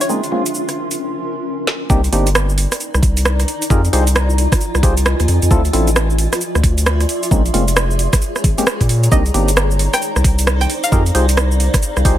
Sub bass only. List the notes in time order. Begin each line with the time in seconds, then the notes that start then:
1.90 C2
2.12 G1
2.94 C2
3.03 C2
3.70 F2
3.93 C2
4.75 C2
4.83 C2
5.20 D#2
5.28 F2
5.43 F2
5.51 D2
5.74 A1
6.55 D2
6.63 D2
7.31 A#1
7.54 F1
8.44 G#1
8.81 A#2
9.12 C2
9.34 G1
10.16 C2
10.24 C2
10.92 F2
11.15 C2
11.96 C2
12.05 C2